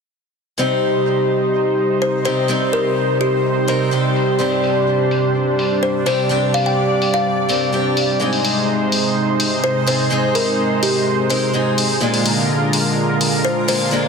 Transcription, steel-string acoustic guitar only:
0.58 C3 G3 C4 D#4 G4
2.25 C3 G3 C4 D#4 G4
2.48 C3 G3 C4 D#4 G4
3.68 C3 G3 C4 D#4 A#4
3.91 C3 G3 C4 D#4 G4
4.39 G2 G3 C4 D4 G4
6.06 G2 G3 C4 D4 G4
6.29 G2 G3 C4 D4 G4
7.49 G2 G3 C4 D4 A#4
7.72 G2 G3 C4 D4 G4
8.20 G#2 G#3 C4 D#4 G#4
9.87 G#2 G#3 C4 D#4 G#4
10.10 G#2 G#3 C4 D#4 G#4
11.30 G#2 G#3 C4 D#4 A#4
11.53 G#2 G#3 C4 D#4 G#4
12.00 A#2 G#3 A#3 D4 F4
13.68 A#2 G#3 A#3 D4 F4
13.91 A#2 G#3 A#3 D4 F4

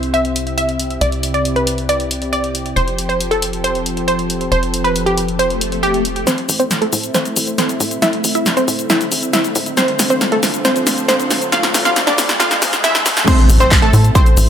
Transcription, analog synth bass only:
Already playing: C2
1.01 C2
2.76 F1
4.52 F1
6.49 A1
6.93 A2
7.36 A1
7.80 A2
8.24 A1
8.68 A2
9.11 A1
9.55 A2
9.99 D2
10.43 D1
10.87 D2
11.31 D1
11.74 D2
12.18 D1
12.62 D2
13.06 D2
13.50 A1
13.93 A2
14.37 A1

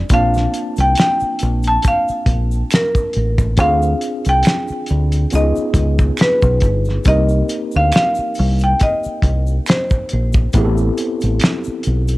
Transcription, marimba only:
0.14 F5
0.81 G5
1.00 G5
1.68 A5
1.88 F5
2.75 A#4
3.60 F5
4.29 G5
5.35 D#5
6.22 B4
7.08 D#5
7.76 F5
7.96 F5
8.64 G5
8.83 D#5
9.69 C5

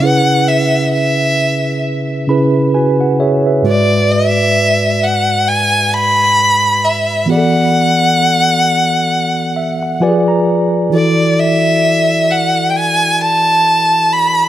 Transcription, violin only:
0.03 F#5
0.49 E5
0.94 E5
3.67 D5
4.12 E5
5.03 F#5
5.48 G#5
5.94 B5
6.85 E5
7.30 F#5
10.94 D5
11.39 E5
12.31 F#5
12.70 G5
12.76 G#5
13.22 A5
14.13 B5

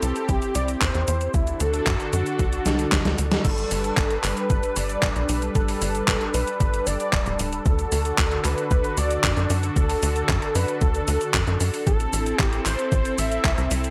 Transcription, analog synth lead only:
0.03 A4
0.29 G4
0.55 D5
0.82 C5
1.08 C5
1.34 E4
1.61 A4
2.13 F#4
3.45 A4
4.24 B4
4.50 B4
4.76 D5
5.55 A4
6.34 B4
6.60 B4
6.86 D5
7.66 A4
8.45 B4
8.72 B4
8.98 D5
9.77 A4
10.55 B4
10.82 A4
11.87 A4
12.42 G4
12.65 C5
12.92 C5
13.18 E5

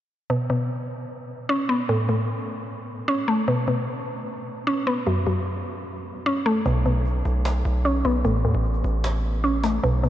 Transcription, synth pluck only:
0.30 B2
0.50 B2
1.49 C#4
1.69 B3
1.89 A2
2.09 A2
3.08 C#4
3.28 A3
3.48 B2
3.68 B2
4.67 C#4
4.87 B3
5.07 F#2
5.27 F#2
6.26 C#4
6.46 A3
6.66 B2
6.86 B2
7.85 C#4
8.05 B3
8.25 A2
8.45 A2
9.44 C#4
9.64 A3
9.83 B2
10.03 B2

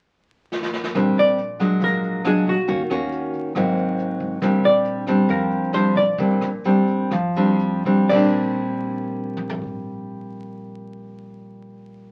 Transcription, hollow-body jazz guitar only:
1.19 D5
1.84 A#4
2.27 G#4
2.49 F#4
4.65 D5
5.30 A#4
5.74 C5
5.97 D5
8.09 D5

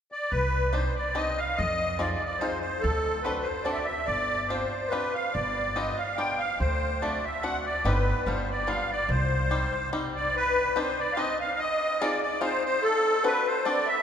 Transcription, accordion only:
0.12 D5
0.31 B4
0.73 C5
0.96 D5
1.16 D#5
1.38 F5
1.56 D#5
1.98 D5
2.13 D5
2.25 D5
2.38 C5
2.60 C5
2.80 A4
3.23 B4
3.42 C5
3.63 D5
3.71 D5 E5
3.85 E5
4.05 D5
4.48 C5
4.89 B4
5.13 F5
5.32 D5
5.74 D#5
5.97 F5
6.16 G5
6.39 F5
6.59 C5
7.01 D5
7.24 E5
7.42 F#5
7.65 D5
7.86 B4
8.27 C5
8.50 D5
8.68 F5
8.91 D5
9.10 C5
10.16 D5
10.36 B4
10.77 C5
10.99 D5
11.13 D#5 F5
11.40 F5
11.59 D#5
12.01 D5
12.22 D5
12.42 C5
12.65 C5
12.82 A4
13.25 B4
13.47 C5
13.65 D5
13.87 E5

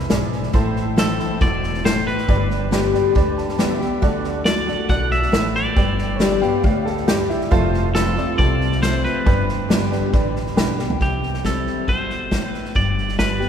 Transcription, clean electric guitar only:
0.99 A4
1.42 D5
1.85 C5
2.07 B4
4.46 D5
4.90 F#5
5.12 E5
5.56 D5
7.95 A4
8.38 D5
8.83 C5
9.05 B4
11.02 G4
11.46 A4
11.89 C5
12.50 B4
12.76 D5
13.19 B4

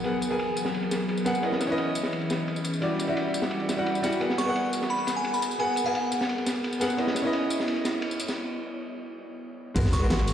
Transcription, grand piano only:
Already playing: B3 G#4 A#4 F#5
0.04 B3 G#4 A#4 F#5
0.30 B3 G#4 A#4 G#5
1.25 B3 G#4 A#4 F#5
1.42 C#4 E4 B4 D#5
1.67 C#4 E4 B4
1.72 D#5
2.81 G3 E4 F#4 D5
3.07 G3 E4 F#4 E5
3.76 G3 E4 F#4 F#5
4.02 G3 E4 F#4 F#5
4.20 B3 G#4 A#4 F#5
4.44 B3 G#4 A#4
4.49 F#5
5.58 B3 G#4 A#4 F#5
5.84 B3 G#4 A#4 G#5
6.80 B3 G#4 A#4 F#5
6.97 C#4 E4 B4 D#5
7.22 C#4 E4 B4
7.27 D#5
9.74 G#3 B3 F#4 A#4
9.99 G#3 B3 F#4
10.04 A#4

